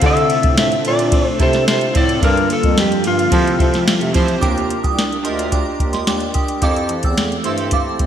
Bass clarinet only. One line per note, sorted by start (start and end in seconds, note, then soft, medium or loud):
0.02 0.35 D3 loud
0.44 0.77 A2 medium
0.84 1.29 A#2 loud
1.39 1.62 C3 medium
1.66 1.89 C3 medium
1.95 2.17 A2 medium
2.22 2.55 G2 loud
2.64 2.97 F2 medium
3.04 3.26 G2 medium
3.32 3.54 F3 loud
3.60 3.82 F3 medium
3.86 3.92 C3 soft
4.00 4.11 C3 medium
4.15 4.37 F3 medium
4.42 4.75 D#2 loud
4.84 5.17 C2 medium
5.24 5.69 D2 medium
5.80 6.02 D#2 medium
6.07 6.29 D#2 medium
6.62 6.95 F2 medium
7.04 7.37 E2 medium
7.44 7.89 G2 medium
8.00 8.06 F2 medium